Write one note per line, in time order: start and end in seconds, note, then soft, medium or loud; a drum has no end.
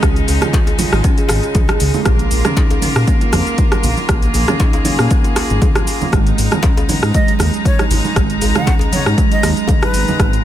0.00 0.22 C#2 loud
0.00 2.02 C#3 medium
0.00 2.02 G#3 medium
0.00 0.10 C#4 medium
0.00 2.02 D#4 medium
0.00 kick loud
0.00 cross-stick medium
0.00 closed hi-hat medium
0.00 cabasa medium
0.16 closed hi-hat soft
0.16 cabasa soft
0.28 0.39 C#2 medium
0.28 open hi-hat medium
0.28 djembe tone medium
0.28 cabasa loud
0.41 0.48 F4 loud
0.41 cross-stick medium
0.41 closed hi-hat soft
0.41 mid tom medium
0.41 muted conga soft
0.41 low conga loud
0.41 cabasa soft
0.53 0.61 F4 medium
0.53 kick loud
0.53 closed hi-hat medium
0.53 djembe slap loud
0.53 cabasa medium
0.67 closed hi-hat soft
0.67 djembe tone medium
0.67 cabasa soft
0.79 0.92 F4 loud
0.79 mid tom medium
0.79 open hi-hat medium
0.79 high conga medium
0.79 low conga medium
0.79 cabasa medium
0.93 1.02 G#1 medium
0.93 cross-stick medium
0.93 cabasa soft
1.04 1.17 C#4 loud
1.04 kick loud
1.04 closed hi-hat medium
1.04 high conga medium
1.04 cabasa medium
1.17 1.25 G#4 medium
1.17 closed hi-hat soft
1.17 muted conga soft
1.17 cabasa soft
1.29 1.40 G#1 loud
1.29 cross-stick medium
1.29 open hi-hat medium
1.29 djembe slap medium
1.29 cabasa loud
1.43 closed hi-hat soft
1.43 cabasa soft
1.55 kick loud
1.55 closed hi-hat medium
1.55 mid tom medium
1.55 muted conga soft
1.55 djembe tone loud
1.55 cabasa medium
1.68 1.75 G#4 medium
1.68 cross-stick loud
1.68 closed hi-hat soft
1.68 high conga medium
1.68 cabasa soft
1.80 1.91 C#2 medium
1.80 open hi-hat medium
1.80 cabasa loud
1.94 2.05 G#3 medium
1.94 muted conga soft
1.94 high conga medium
1.94 low conga loud
1.94 cabasa soft
2.06 2.26 A#1 loud
2.06 6.09 A#3 medium
2.06 2.14 A#3 medium
2.06 6.09 F4 medium
2.06 4.07 A#4 medium
2.06 kick loud
2.06 cross-stick medium
2.06 closed hi-hat medium
2.06 cabasa medium
2.19 closed hi-hat soft
2.19 cabasa soft
2.31 2.42 A#1 medium
2.31 open hi-hat medium
2.31 cabasa loud
2.45 2.52 C#4 loud
2.45 cross-stick medium
2.45 closed hi-hat soft
2.45 mid tom medium
2.45 muted conga soft
2.45 low conga medium
2.45 cabasa soft
2.57 2.64 D#4 medium
2.57 kick loud
2.57 closed hi-hat medium
2.57 djembe slap loud
2.57 cabasa medium
2.71 closed hi-hat soft
2.71 djembe tone medium
2.71 cabasa soft
2.82 2.95 C#4 loud
2.82 mid tom medium
2.82 open hi-hat medium
2.82 muted conga soft
2.82 high conga medium
2.82 low conga medium
2.82 cabasa loud
2.96 3.05 A#2 medium
2.96 cross-stick medium
2.96 cabasa soft
3.07 3.21 A#3 loud
3.07 kick loud
3.07 closed hi-hat medium
3.07 cabasa medium
3.21 3.28 F4 medium
3.21 closed hi-hat soft
3.21 muted conga medium
3.21 cabasa soft
3.32 3.43 F2 loud
3.32 cross-stick medium
3.32 open hi-hat medium
3.32 djembe tone medium
3.32 high conga medium
3.32 low conga loud
3.32 cabasa loud
3.47 closed hi-hat soft
3.47 cabasa soft
3.58 kick loud
3.58 closed hi-hat medium
3.58 muted conga soft
3.58 cabasa medium
3.72 3.79 F4 medium
3.72 cross-stick medium
3.72 closed hi-hat soft
3.72 high conga loud
3.72 cabasa soft
3.83 3.94 A#1 medium
3.83 open hi-hat medium
3.83 low conga loud
3.83 cabasa loud
3.97 4.08 F3 medium
3.97 muted conga soft
3.97 high conga medium
3.97 cabasa soft
4.09 4.29 A#1 loud
4.09 4.17 A#3 medium
4.09 6.11 G#4 medium
4.09 kick loud
4.09 cross-stick medium
4.09 closed hi-hat medium
4.09 cabasa medium
4.22 closed hi-hat soft
4.22 cabasa soft
4.34 4.45 A#1 medium
4.34 open hi-hat medium
4.34 djembe tone medium
4.34 cabasa loud
4.47 4.55 C#4 loud
4.47 cross-stick medium
4.47 closed hi-hat soft
4.47 mid tom loud
4.47 muted conga soft
4.47 low conga medium
4.47 cabasa soft
4.60 4.68 D#4 medium
4.60 kick loud
4.60 closed hi-hat medium
4.60 djembe slap loud
4.60 cabasa medium
4.73 closed hi-hat soft
4.73 djembe tone loud
4.73 cabasa soft
4.85 4.99 C#4 loud
4.85 mid tom medium
4.85 open hi-hat medium
4.85 high conga loud
4.85 low conga medium
4.85 cabasa medium
4.99 5.08 A#2 medium
4.99 cross-stick medium
4.99 cabasa soft
5.11 5.24 A#3 loud
5.11 kick loud
5.11 closed hi-hat medium
5.11 high conga medium
5.11 cabasa medium
5.24 5.31 F4 medium
5.24 closed hi-hat soft
5.24 muted conga soft
5.24 cabasa soft
5.36 cross-stick medium
5.36 open hi-hat medium
5.36 djembe slap medium
5.36 cabasa loud
5.50 5.59 G#1 medium
5.50 closed hi-hat soft
5.50 cabasa soft
5.61 kick loud
5.61 closed hi-hat medium
5.61 mid tom medium
5.61 muted conga soft
5.61 djembe tone loud
5.61 cabasa medium
5.75 5.82 F4 medium
5.75 cross-stick medium
5.75 closed hi-hat soft
5.75 high conga medium
5.75 cabasa soft
5.87 open hi-hat medium
5.87 cabasa loud
6.01 6.11 F3 medium
6.01 muted conga medium
6.01 high conga medium
6.01 low conga loud
6.01 cabasa soft
6.12 6.32 G#1 loud
6.12 6.20 G#3 medium
6.12 10.44 G#3 medium
6.12 10.16 D#4 medium
6.12 10.44 A#5 medium
6.12 kick loud
6.12 cross-stick medium
6.12 closed hi-hat medium
6.12 cabasa medium
6.27 closed hi-hat soft
6.27 cabasa soft
6.38 6.49 G#1 medium
6.38 open hi-hat medium
6.38 cabasa medium
6.51 6.58 B3 loud
6.51 cross-stick medium
6.51 closed hi-hat soft
6.51 mid tom loud
6.51 muted conga soft
6.51 low conga medium
6.51 cabasa soft
6.63 6.71 C#4 medium
6.63 kick loud
6.63 closed hi-hat medium
6.63 djembe slap loud
6.63 cabasa medium
6.77 closed hi-hat soft
6.77 djembe tone loud
6.77 cabasa soft
6.89 7.02 B3 loud
6.89 mid tom medium
6.89 open hi-hat medium
6.89 muted conga soft
6.89 high conga medium
6.89 low conga medium
6.89 cabasa medium
7.03 7.11 G#2 medium
7.03 cross-stick medium
7.03 cabasa soft
7.14 7.28 G#3 loud
7.14 7.33 D#5 medium
7.14 kick loud
7.14 closed hi-hat medium
7.14 cabasa medium
7.28 7.39 F#3 medium
7.28 closed hi-hat soft
7.28 muted conga soft
7.28 cabasa soft
7.39 7.50 D#2 loud
7.39 cross-stick medium
7.39 open hi-hat medium
7.39 djembe tone medium
7.39 high conga medium
7.39 low conga medium
7.39 cabasa medium
7.54 closed hi-hat soft
7.54 cabasa soft
7.65 7.84 C#5 medium
7.65 kick loud
7.65 closed hi-hat medium
7.65 muted conga soft
7.65 cabasa medium
7.79 7.85 D#4 medium
7.79 cross-stick medium
7.79 closed hi-hat soft
7.79 high conga medium
7.79 cabasa soft
7.90 8.01 G#1 medium
7.90 open hi-hat medium
7.90 low conga loud
7.90 cabasa medium
8.04 8.15 D#3 medium
8.04 muted conga soft
8.04 high conga medium
8.04 cabasa soft
8.16 8.36 G#1 loud
8.16 8.24 G#3 medium
8.16 kick loud
8.16 cross-stick medium
8.16 closed hi-hat medium
8.16 cabasa soft
8.30 closed hi-hat soft
8.30 cabasa soft
8.41 8.52 G#1 medium
8.41 open hi-hat medium
8.41 djembe tone medium
8.41 cabasa medium
8.55 8.62 B3 loud
8.55 8.73 F#5 medium
8.55 cross-stick medium
8.55 closed hi-hat soft
8.55 mid tom loud
8.55 muted conga medium
8.55 low conga medium
8.55 cabasa soft
8.67 8.74 C#4 medium
8.67 kick loud
8.67 closed hi-hat medium
8.67 djembe slap loud
8.67 cabasa medium
8.79 closed hi-hat soft
8.79 djembe tone medium
8.79 cabasa soft
8.92 9.06 B3 loud
8.92 9.11 C#5 medium
8.92 mid tom medium
8.92 open hi-hat medium
8.92 high conga medium
8.92 low conga medium
8.92 cabasa medium
9.06 9.15 G#2 medium
9.06 cross-stick medium
9.06 cabasa soft
9.18 9.31 G#3 loud
9.18 kick loud
9.18 closed hi-hat medium
9.18 high conga medium
9.18 cabasa medium
9.32 9.42 F#3 medium
9.32 9.49 D#5 loud
9.32 closed hi-hat soft
9.32 muted conga medium
9.32 cabasa soft
9.43 9.54 D#2 loud
9.43 cross-stick medium
9.43 open hi-hat medium
9.43 djembe slap medium
9.43 cabasa medium
9.57 closed hi-hat soft
9.57 cabasa soft
9.68 kick loud
9.68 closed hi-hat medium
9.68 mid tom medium
9.68 muted conga soft
9.68 djembe tone medium
9.68 cabasa medium
9.82 9.89 D#4 medium
9.82 10.33 B4 medium
9.82 cross-stick medium
9.82 closed hi-hat soft
9.82 high conga medium
9.82 cabasa soft
9.94 10.04 G#1 medium
9.94 open hi-hat medium
9.94 cabasa medium
10.08 10.18 D#3 medium
10.08 muted conga medium
10.08 high conga medium
10.08 low conga loud
10.08 cabasa soft
10.19 10.39 G#1 loud
10.19 10.27 G#3 medium
10.19 10.44 F4 medium
10.19 kick loud
10.19 cross-stick medium
10.19 closed hi-hat medium
10.19 cabasa soft
10.33 closed hi-hat soft
10.33 cabasa soft